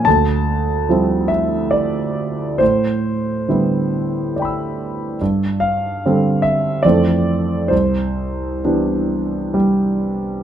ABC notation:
X:1
M:3/4
L:1/8
Q:1/4=70
K:C
V:1 name="Grand piano"
a3 e d2 | c4 [dgbe']2 | z f2 e d2 | c4 G,2 |]
V:2 name="Grand piano" clef=bass
D,,2 [F,G,CE]4 | A,,2 [D,G,B,E]4 | G,,2 [D,G,CA]2 [F,,E,A,CA]2 | C,,2 [E,B,DG]4 |]